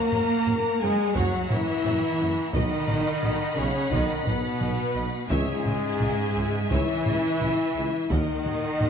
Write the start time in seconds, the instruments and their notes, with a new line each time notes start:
Already playing: cello section A#3, trombone section A#3, french horn section A#4, viola section C#5 F#5, violin section F#5 A#5, flute section A#5
0.12 tuba F#1, double bass section F#2, viola section C#5 F#5, taiko low-mid
0.47 tuba F#1, double bass section F#2, viola section C#5 F#5, taiko low-mid
0.81 tuba F#1, double bass section F#2, trombone section G#3, cello section G#3, french horn section G#4, viola section C#5 F#5, violin section G#5, flute section G#5
1.14 tuba F#1, double bass section F#2, cello section F#3, trombone section F#3, french horn section F#4, viola section C#5 F#5, violin section F#5, flute section F#5, taiko
1.49 tuba F#1, double bass section F#2, trombone section E3, cello section E3, french horn section E4, viola section C#5 F#5, violin section E5, flute section E5, taiko low-mid
1.85 tuba F#1, double bass section F#2, viola section C#5 F#5, taiko low-mid
2.20 tuba F#1, double bass section F#2, viola section C#5 F#5
2.53 tuba B1, double bass section B1, trombone section D#3, cello section D#3, french horn section D#4, violin section D#5 F#5 B5, flute section D#5, viola section D#5, taiko
2.88 tuba B1, double bass section B1, viola section D#5, taiko low-mid
3.23 tuba B1, double bass section B1, viola section D#5, taiko low-mid
3.56 double bass section B1, tuba B1, trombone section C#3, cello section C#3, french horn section C#4, violin section C#5, flute section C#5, viola section D#5
3.90 double bass section B1, tuba B1, trombone section D#3, cello section D#3, french horn section D#4, violin section D#5, viola section D#5, flute section D#5, taiko
4.25 double bass section B1, tuba B1, trombone section B2, cello section B2, french horn section B3, violin section B4, flute section B4, viola section D#5, taiko low-mid
4.60 double bass section B1, tuba B1, viola section D#5, taiko low-mid
4.95 double bass section B1, tuba B1, viola section D#5
5.29 double bass section C#2, tuba C#2, trombone section G#2, cello section G#2, timpani C#3, french horn section G#3, flute section G#4, violin section G#4 E5 G#5, viola section C#5 E5, taiko
5.65 double bass section C#2, tuba C#2, viola section C#5 E5, taiko low-mid
6.00 double bass section C#2, tuba C#2, viola section C#5 E5, taiko low-mid
6.35 double bass section C#2, tuba C#2, viola section C#5 E5
6.70 double bass section C#2, tuba C#2, cello section E3, trombone section E3, french horn section E4, viola section C#5 E5, violin section E5, flute section E5, taiko
7.05 double bass section C#2, tuba C#2, viola section C#5 E5, taiko low-mid
7.40 double bass section C#2, tuba C#2, viola section C#5 E5, taiko low-mid
7.75 double bass section C#2, tuba C#2, viola section C#5 E5
8.10 double bass section D#2, tuba D#2, cello section D#3, trombone section D#3, french horn section D#4, viola section A#4 D#5, violin section D#5 F#5, flute section D#5, taiko
8.45 double bass section D#2, tuba D#2, viola section A#4 D#5, taiko low-mid
8.80 double bass section D#2, tuba D#2, viola section A#4 D#5, taiko low-mid